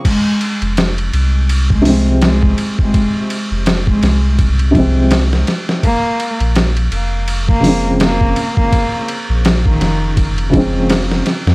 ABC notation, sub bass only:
X:1
M:4/4
L:1/16
Q:"Swing 16ths" 1/4=83
K:Fm
V:1 name="Sub bass" clef=bass
z3 F,,,3 C,,8 z2 | z3 F,,,3 C,,8 z2 | z3 B,,,3 F,,,8 z2 | z3 B,,,3 F,,,8 z F,, |]